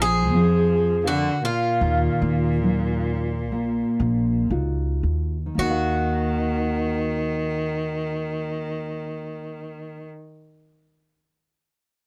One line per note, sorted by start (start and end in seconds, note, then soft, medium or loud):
0.00 0.32 A#1 medium
0.00 1.01 F3 medium
0.00 0.19 F4 medium
0.00 1.07 G#4 loud
0.00 0.19 A#4 soft
0.00 0.19 D5 medium
0.32 1.28 F2 loud
0.32 1.03 F3 medium
1.04 1.39 D3 medium
1.04 1.44 F#4 medium
1.04 1.65 A#4 soft
1.04 1.66 D5 medium
1.04 1.65 F5 soft
1.42 4.46 A#2 medium
1.42 4.48 F4 medium
1.81 2.07 D#2 medium
1.81 2.60 D#3 medium
2.22 3.50 D#2 medium
2.63 3.34 F#3 medium
2.63 3.34 D#4 soft
2.63 3.34 F4 soft
3.50 3.82 A#1 medium
3.50 4.48 A#3 medium
4.00 4.47 A#1 medium
4.50 5.00 C#2 medium
4.50 5.36 D#4 soft
4.50 5.36 F4 soft
4.50 5.36 F#4 soft
5.03 5.53 D#2 medium
5.46 9.96 D#3 soft
5.55 10.08 D#2 medium
5.55 10.08 D#3 medium
5.55 10.04 A#3 soft
5.59 10.12 D#4 soft
5.59 10.09 F#4 medium
5.70 10.20 F5 medium